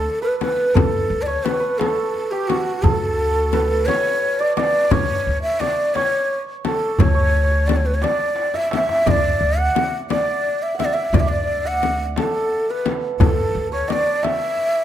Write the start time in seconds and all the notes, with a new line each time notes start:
Already playing: A4 C5 D5
0.07 tombak ka
0.22 B4
0.40 B4, tombak tek, frame drum
0.74 D2 A4, tombak dum, frame drum
1.10 D2
1.22 D5
1.26 C#5
1.44 B4, tombak tek, frame drum
1.53 C#5
1.60 B4
1.78 A4, tombak tek, frame drum
2.15 tombak ka
2.31 G4
2.48 F#4, tombak tek, frame drum
2.83 D2 A4, tombak dum, frame drum
3.53 B4, tombak tek, frame drum
3.86 C#5, tombak tek, frame drum
4.23 tombak ka
4.40 D5
4.56 D5 D#5, tombak tek, frame drum
4.85 D5
4.91 D2 C#5, tombak dum, frame drum
5.27 D2
5.42 E5
5.60 D5, tombak tek, frame drum
5.94 C#5, tombak tek, frame drum
6.65 A4, tombak tek, frame drum
6.99 D2 C#5, tombak dum, frame drum
7.07 C#5
7.14 C#5
7.22 C#5
7.29 C#5
7.36 C#5
7.44 C#5
7.51 C#5
7.67 D5, tombak tek, frame drum
7.76 C#5
7.86 B4
7.95 C#5
8.02 D5, tombak tek, frame drum
8.36 tombak tek
8.54 E5, tombak ka
8.71 E5, tombak tek, frame drum
8.89 tombak ka
9.06 D2 D5 D#5, tombak dum, frame drum
9.11 D5
9.41 D2
9.58 F#5
9.75 tombak tek, frame drum
10.10 D5, tombak tek, frame drum
10.46 tombak ka
10.63 E5
10.75 F#5
10.79 E5, tombak tek, frame drum
10.85 D5
10.94 E5
11.13 D2 D5, tombak dum, frame drum
11.20 E5
11.27 D5
11.65 F#5
11.83 frame drum
12.16 A4, tombak tek, frame drum
12.52 tombak ka
12.70 B4
12.86 tombak tek, frame drum
13.20 D2 A4, tombak dum, frame drum
13.55 D2
13.72 C#5
13.88 D5 D#5, tombak tek, frame drum
13.93 D5
14.23 E5, tombak tek, frame drum
14.57 tombak ka